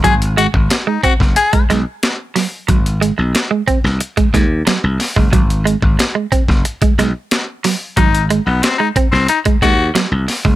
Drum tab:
HH |xxx-x-x-xxx-x-o-|xxx-x-x-xxx-x-o-|xxx-x-x-xxx-x-o-|xxx-x-x-xxx-x-o-|
SD |----o--o--o-o-o-|----o--o--o-o-o-|----o--o--o-o-o-|----o--o--o-o-o-|
BD |o--o--oo-o------|o-----o--oo----o|o--o--oo-o------|o-----o--oo----o|